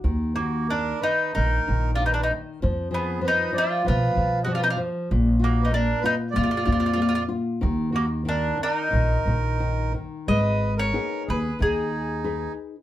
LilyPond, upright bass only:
\new Staff \with { instrumentName = "Upright bass" } { \clef bass \time 4/4 \key ees \minor \tempo 4 = 94 ees,2 bes,,8 bes,,4. | f,2 ces8 ces4. | bes,,2 f,8 f,4. | ees,2 bes,,8 bes,,4. |
\key gis \minor gis,,4. dis,8 dis,2 | }